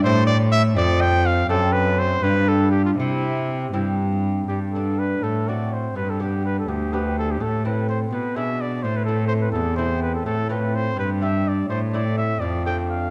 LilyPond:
<<
  \new Staff \with { instrumentName = "Trumpet" } { \time 6/8 \key c \major \tempo 4. = 83 c''8 d''8 e''8 d''8 g''8 f''8 | a'8 b'8 c''8 b'8 a'8 g'16 f'16 | e'4. r4. | \key a \dorian g'8 a'8 b'8 a'8 d''8 c''8 |
b'16 a'16 g'8 b'16 a'16 g'8 b'8 a'16 g'16 | a'8 b'8 c''8 b'8 e''8 d''8 | c''16 b'16 a'8 c''16 b'16 a'8 c''8 b'16 a'16 | \key f \lydian a'8 b'8 c''8 b'8 e''8 d''8 |
c''8 d''8 e''8 d''8 g''8 f''8 | }
  \new Staff \with { instrumentName = "Lute" } { \time 6/8 \key c \major <a c' e'>4. <a c' d'>4. | <a c' d'>4. <d' f'>4. | r4. <c' e'>4. | \key a \dorian r8 <b d'>4 r8 <c' fis'>4 |
r8 <b d' g'>4. <b d' g'>4 | r8 <a c' e'>4 r8 <gis b d'>4 | r8 <a c' e'>4. <a c' e'>4 | \key f \lydian r8 <a c' f'>4 r8 <d' g'>4 |
r8 <a c' e'>4 r8 <a c' d'>4 | }
  \new Staff \with { instrumentName = "Lute" } { \clef bass \time 6/8 \key c \major a,4. f,4. | fis,4. g,4. | c4. g,4. | \key a \dorian g,4. a,4. |
g,4. d,4. | a,4. b,4. | a,4. e,4. | \key f \lydian a,4. g,4. |
a,4. f,4. | }
  \new Staff \with { instrumentName = "Cello" } { \clef bass \time 6/8 \key c \major a,4. f,4. | fis,4. g,4. | c4. g,4. | \key a \dorian g,4. a,4. |
g,4. d,4. | a,4. b,4. | a,4. e,4. | \key f \lydian a,4. g,4. |
a,4. f,4. | }
>>